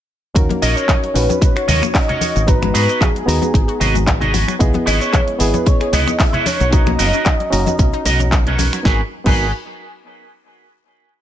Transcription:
0.34 D#2 F#3 C#4 D#4 F#4 A#4, kick, closed hi-hat, cabasa, shaker
0.49 A#3, closed hi-hat, high conga, cabasa
0.62 A#1 C#4 F#4 A#4 C#5 D#5, open hi-hat, shaker
0.76 D#4 C#5, closed hi-hat, cabasa, shaker
0.88 F#4, kick, clap, closed hi-hat, high conga, cabasa, shaker
1.03 F#3, closed hi-hat, cabasa
1.14 A#1 A#3 C#4 D#4 F#4 B4 C#5, open hi-hat, shaker
1.29 C#4, muted clean electric guitar stroke, closed hi-hat, high conga, cabasa, shaker
1.41 D#4, muted clean electric guitar stroke, kick, closed hi-hat, cabasa, shaker
1.55 F#4 C#5, finger snap, closed hi-hat, cabasa
1.67 D#2 F#3 F#4 A#4 C#5 D#5, open hi-hat, low conga, shaker
1.82 A#3, finger snap, closed hi-hat, high conga, cabasa, shaker
1.94 C#4 D#5, muted clean electric guitar stroke, kick, clap, open hi-hat, cabasa, shaker
2.08 D#4 F#4 A#4 C#5 F#5, closed hi-hat, low conga, cabasa
2.21 F#4, open hi-hat, high conga, shaker
2.36 G#1 F#3, closed hi-hat, cabasa, shaker
2.47 F#3 B3 D#4 F#4 B4 A#5, kick, closed hi-hat, cabasa, shaker
2.62 G#3, finger snap, closed hi-hat, high conga, cabasa
2.73 G#2 B3 F#4 G#4 B4 D#5, open hi-hat, shaker
2.89 D#4, closed hi-hat, cabasa, shaker
3.01 F#4 G#4, kick, clap, closed hi-hat, high conga, cabasa, shaker
3.15 F#3, closed hi-hat, cabasa
3.26 D#2 G#3 B3 D#4 F#4 A#5, open hi-hat, shaker
3.41 B3, muted clean electric guitar stroke, closed hi-hat, high conga, cabasa, shaker
3.53 G#1 D#4, muted clean electric guitar stroke, kick, closed hi-hat, cabasa, shaker
3.68 F#4, closed hi-hat, cabasa
3.80 G#1 F#3 F#4 G#4 B4 D#5, open hi-hat, low conga, shaker
3.95 G#3, closed hi-hat, high conga, cabasa, shaker
4.07 B3, muted clean electric guitar stroke, kick, clap, closed hi-hat, cabasa, shaker
4.20 D#4 F#4 G#4 B4 D#5, closed hi-hat, low conga, cabasa
4.34 F#4, open hi-hat, high conga, shaker
4.48 F#3, finger snap, closed hi-hat, cabasa, shaker
4.59 C#2 G#3 B3 E4 G#4 D#5, kick, closed hi-hat, cabasa, shaker
4.73 B3, closed hi-hat, high conga, cabasa
4.85 G#1 C#4 E4 G#4 B4 C#5 D#5, open hi-hat, shaker
5.00 E4 C#5, closed hi-hat, cabasa, shaker
5.13 G#4, kick, clap, closed hi-hat, high conga, cabasa, shaker
5.27 G#3, closed hi-hat, cabasa
5.38 G#1 B3 E4 G#4 B4 D#5, open hi-hat, shaker
5.54 C#4, muted clean electric guitar stroke, closed hi-hat, high conga, cabasa, shaker
5.66 E4 C#5, muted clean electric guitar stroke, kick, closed hi-hat, cabasa, shaker
5.81 G#4, finger snap, closed hi-hat, cabasa
5.92 C#2 G#3 E4 G#4 B4 C#5 D#5, open hi-hat, low conga, shaker
6.06 B3, finger snap, closed hi-hat, high conga, cabasa, shaker
6.19 C#4 E5, kick, clap, open hi-hat, cabasa, shaker
6.33 E4 G#4 B4 C#5, closed hi-hat, low conga, cabasa
6.45 D#4 A#4 B4 C#5, open hi-hat, high conga, shaker
6.60 B1 F#3, closed hi-hat, cabasa, shaker
6.71 F#3 C#4 D#4 F#4 D#5 A#5, kick, closed hi-hat, cabasa, shaker
6.86 A#3, finger snap, closed hi-hat, high conga, cabasa
6.99 F#1 B3 D#4 A#4 B4 D#5, open hi-hat, shaker
7.13 C#4, closed hi-hat, cabasa, shaker
7.25 D#4, kick, clap, closed hi-hat, high conga, cabasa, shaker
7.40 F#3, closed hi-hat, cabasa
7.50 F#1 A#3 C#4 D#4 F#4 A#5, open hi-hat, shaker
7.66 B3, muted clean electric guitar stroke, closed hi-hat, high conga, cabasa, shaker
7.78 B1 C#4, muted clean electric guitar stroke, kick, closed hi-hat, cabasa, shaker
7.93 D#4, closed hi-hat, cabasa
8.05 B1 F#3 D#4 A#4 B4 D#5, open hi-hat, low conga, shaker
8.20 F#3, closed hi-hat, high conga, cabasa, shaker
8.32 C#4, muted clean electric guitar stroke, kick, clap, closed hi-hat, cabasa, shaker
8.46 C#4 D#4 A#4 B4 C#5, closed hi-hat, low conga, cabasa
8.58 C#4, open hi-hat, high conga, shaker
8.73 F#3, finger snap, closed hi-hat, cabasa, shaker
8.83 G#1 F#3 B3 D#4 F#4 G#4 A#4 B4 G#5, kick, snare
9.24 G#1 F#3 B3 D#4 F#4 G#4 A#4 B4 G#5, kick, crash

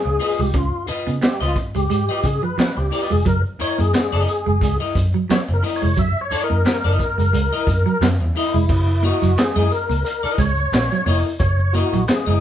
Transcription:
Already playing: G#4
0.05 C#2, muted clean electric guitar stroke
0.19 F4 B4 D#5, muted clean electric guitar stroke, open hi-hat
0.38 C2 G#3 G4, muted clean electric guitar stroke
0.54 C#2 C#4 F4, kick, closed hi-hat
0.87 F4 B4 D#5, muted clean electric guitar stroke, muted picked electric bass stroke, closed hi-hat
1.07 C#3 B3, closed hi-hat
1.21 B3 G4, muted clean electric guitar stroke, snare, clap, closed hi-hat
1.41 C#2 F4 B4 D#5, muted clean electric guitar stroke
1.56 muted clean electric guitar stroke, kick, closed hi-hat
1.75 C#2 G#3 G4, muted clean electric guitar stroke, closed hi-hat
1.90 G#2 G#3, muted clean electric guitar stroke, closed hi-hat
2.09 F4 B4 D#5, muted clean electric guitar stroke
2.24 C#3 G#4, muted clean electric guitar stroke, kick, closed hi-hat
2.42 F3 B4, muted clean electric guitar stroke
2.58 F3, muted picked electric bass stroke, snare, clap, closed hi-hat
2.77 C#2 G4, muted clean electric guitar stroke
2.91 F4 B4 D#5, muted clean electric guitar stroke, open hi-hat
3.10 F1 G#3 G#4, muted clean electric guitar stroke
3.25 F#1 F#3 A#4, kick, closed hi-hat, shaker
3.46 shaker
3.59 E4 A#4 C#5 D#5, muted clean electric guitar stroke, muted picked electric bass stroke, closed hi-hat
3.78 F#2 A#3 G#4, closed hi-hat, shaker
3.93 A#3, muted clean electric guitar stroke, snare, clap, closed hi-hat, shaker
4.12 F#1 E4 A#4 D#5, muted clean electric guitar stroke, shaker
4.28 muted clean electric guitar stroke, closed hi-hat, shaker
4.46 F#1 G#3, muted clean electric guitar stroke, shaker
4.61 C#2 G#3, muted clean electric guitar stroke, kick, closed hi-hat, shaker
4.80 E4 A#4 D#5, muted clean electric guitar stroke, shaker
4.95 F#2, muted clean electric guitar stroke, kick, closed hi-hat
5.14 F#3, muted clean electric guitar stroke, shaker
5.29 F#3 C#5, muted picked electric bass stroke, snare, clap, closed hi-hat, shaker
5.49 F#1, muted clean electric guitar stroke, shaker
5.54 A#4
5.63 E4 A#4 D#5, muted clean electric guitar stroke, open hi-hat, shaker
5.76 C#5
5.82 F1 G#3, muted clean electric guitar stroke, shaker
5.97 F#1 F#3 E5, kick, closed hi-hat, shaker
6.17 shaker
6.21 C#5
6.31 E4 A#4 D#5, muted clean electric guitar stroke, muted picked electric bass stroke, closed hi-hat, shaker
6.44 A#4
6.50 F#2 A#3, shaker
6.65 A#3, muted clean electric guitar stroke, snare, clap, closed hi-hat, shaker
6.84 F#1 E4 A#4 D#5, muted clean electric guitar stroke, shaker
6.99 muted clean electric guitar stroke, kick, closed hi-hat, shaker
7.18 F#1 G#3, muted clean electric guitar stroke, closed hi-hat, shaker
7.33 C#2 G#3, muted clean electric guitar stroke, closed hi-hat, shaker
7.52 E4 A#4 D#5, muted clean electric guitar stroke, shaker
7.67 F#2, muted clean electric guitar stroke, kick, closed hi-hat, shaker
7.86 F#3, muted clean electric guitar stroke, shaker
8.01 F#2 F#3, snare, clap, closed hi-hat, shaker
8.20 E2, muted clean electric guitar stroke, shaker
8.35 E4 A#4 D#5, muted clean electric guitar stroke, open hi-hat, shaker
8.54 F1 G#3, muted clean electric guitar stroke, shaker
8.69 F#1, kick, crash, shaker
8.88 muted clean electric guitar stroke, shaker
9.03 A#3 E4 F#4 A#4 D#5, closed hi-hat, shaker
9.22 F#1 F#3, closed hi-hat, shaker
9.37 G#4, muted picked electric bass stroke, muted clean electric guitar stroke, snare, clap, closed hi-hat, shaker
9.56 F#2 G#3 E4 A#4 D#5, shaker
9.71 A#4, muted clean electric guitar stroke, closed hi-hat, shaker
9.89 C#2 A#3, muted clean electric guitar stroke, closed hi-hat, shaker
10.04 A#4, muted clean electric guitar stroke, closed hi-hat, shaker
10.23 E4 A#4 D#5, muted picked electric bass stroke, shaker
10.38 C#2 G#3 C#5, muted clean electric guitar stroke, kick, closed hi-hat, shaker
10.57 muted clean electric guitar stroke, shaker
10.72 A#1, muted clean electric guitar stroke, snare, clap, closed hi-hat, shaker
10.91 F#3, muted clean electric guitar stroke, shaker
11.06 F1 A#3 E4 A#4 C#5 D#5, open hi-hat
11.25 muted clean electric guitar stroke, shaker
11.39 F#1 C#5, kick, closed hi-hat, shaker
11.59 muted clean electric guitar stroke, shaker
11.73 A#3 E4 F#4 A#4 D#5, closed hi-hat, shaker
11.93 A#1 F#3, closed hi-hat, shaker
12.07 G#4, muted clean electric guitar stroke, muted picked electric bass stroke, snare, clap, closed hi-hat, shaker
12.26 F#1 G#3 E4 A#4 D#5, shaker

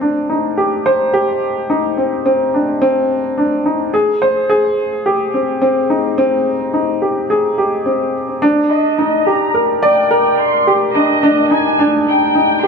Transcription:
Already playing: C4
0.01 D4
0.30 D#4
0.58 G4
0.86 C5
1.13 G4
1.70 D#4
1.97 C4
2.26 C4
2.54 D4
2.82 C4
3.38 D4
3.66 D#4
3.94 G#4
4.22 C5
4.49 G#4
5.06 G4
5.34 C4
5.62 C4
5.90 D#4
6.18 C4
6.74 D#4
7.02 G4
7.30 G#4
7.58 G4
7.86 C4
8.42 D4
8.70 D#5
8.98 D#4
9.26 G4 A#5
9.54 A#4
9.83 D5 G5
10.11 A#4
10.38 C6
10.67 G4
10.94 D4 D#5
11.23 D4
11.51 D#4 G#5
11.79 D4
12.07 G5
12.35 D#4
12.63 G4 C6

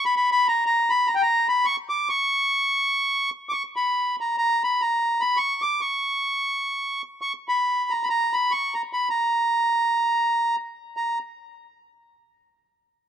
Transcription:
0.05 B5
0.16 B5
0.32 B5
0.48 A#5
0.66 A#5
0.90 B5
1.07 A#5
1.15 G5
1.22 A#5
1.48 B5
1.65 C#6
1.89 D6
2.09 C#6
3.49 C#6 D6
3.76 B5
4.20 A#5
4.38 A#5
4.64 B5
4.82 A#5
5.21 B5
5.37 C#6
5.62 D6
5.81 C#6
7.21 C#6
7.48 B5
7.90 A#5
8.03 B5
8.09 A#5
8.33 B5
8.51 C#6
8.74 A#5
8.93 B5
9.09 A#5
10.97 A#5

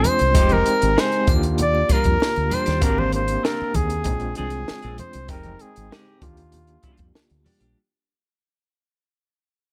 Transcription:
Already playing: G#3 C4 D4 F4
0.04 C5, muted clean electric guitar stroke, closed hi-hat, high conga, low conga, triangle
0.19 C2, muted clean electric guitar stroke, closed hi-hat, muted triangle
0.34 F1 G#3 C4 D#4 F4 G4, kick, closed hi-hat, muted triangle
0.42 G4
0.49 A#4, closed hi-hat, high conga, muted triangle
0.66 closed hi-hat, triangle
0.81 G#1, muted clean electric guitar stroke, closed hi-hat, muted triangle
0.96 G#3 D#4 G#4 C5, snare, muted triangle
1.12 closed hi-hat, muted triangle
1.27 D#2 A#3 D4 F4 G4, muted clean electric guitar stroke, kick, closed hi-hat, muted conga, high conga, low conga, triangle
1.43 muted clean electric guitar stroke, closed hi-hat, muted triangle
1.58 D5, closed hi-hat, muted conga, low conga, muted triangle
1.74 muted clean electric guitar stroke, muted triangle
1.89 G3 D4 F4 A#4, muted fingered electric bass stroke, kick, snare, closed hi-hat, muted conga, high conga, triangle
2.04 F2, muted clean electric guitar stroke, kick, closed hi-hat, muted triangle
2.19 muted clean electric guitar stroke, muted fingered electric bass stroke, snare, muted triangle
2.35 D2, muted clean electric guitar stroke, closed hi-hat, muted triangle
2.50 G3 D4 G4, closed hi-hat, muted conga, high conga, low conga, triangle
2.54 C5
2.66 D#2 G3 D4 G4, snare, closed hi-hat, muted triangle
2.81 G#1 A#3 C4 D4 F#4 G4 A#4, kick, closed hi-hat, muted conga
2.90 G4
2.98 C5, high conga
3.12 C5, closed hi-hat, muted conga
3.27 muted clean electric guitar stroke, closed hi-hat
3.43 C4 D4 G4 A#4, snare, muted conga
3.62 muted fingered electric bass stroke
3.74 D#2 G#4, muted clean electric guitar stroke, kick, closed hi-hat, muted conga, high conga, low conga
3.90 muted clean electric guitar stroke, closed hi-hat
4.04 A#1 G#3 C4 D4 D#4, kick, closed hi-hat, low conga
4.13 F4
4.20 muted clean electric guitar stroke, closed hi-hat
4.35 C4 D4 G#4, closed hi-hat, muted conga, high conga
4.39 C2
4.50 muted clean electric guitar stroke, closed hi-hat
4.67 muted clean electric guitar stroke, muted fingered electric bass stroke, snare, muted conga
4.82 A#1 C4 D4 G#4, closed hi-hat
4.98 C5, muted clean electric guitar stroke, closed hi-hat, muted conga, high conga, low conga
5.13 C2, muted clean electric guitar stroke, closed hi-hat
5.28 F1 G#3 C4 D#4 G4 A#4 G5, kick, closed hi-hat
5.43 closed hi-hat, high conga
5.59 G#4, muted fingered electric bass stroke, closed hi-hat, muted conga
5.76 G#1, muted clean electric guitar stroke, closed hi-hat
5.91 G#3 D#4 G4 G#4, snare, muted conga
6.21 D#2 A#3 D4 F4 G4, muted clean electric guitar stroke, kick, closed hi-hat, muted conga, high conga, low conga
6.37 muted clean electric guitar stroke, closed hi-hat
6.52 closed hi-hat, muted conga, low conga
6.67 muted clean electric guitar stroke, closed hi-hat
6.82 G3 D4 F4, muted fingered electric bass stroke, kick, closed hi-hat, muted conga, high conga
6.97 F2, muted clean electric guitar stroke, kick, closed hi-hat
7.14 muted clean electric guitar stroke, muted fingered electric bass stroke, snare, muted conga
7.30 D2, muted clean electric guitar stroke, closed hi-hat
7.44 G3 D4 G4, open hi-hat, high conga, low conga
7.60 A#1 G3 D4 G4, closed hi-hat

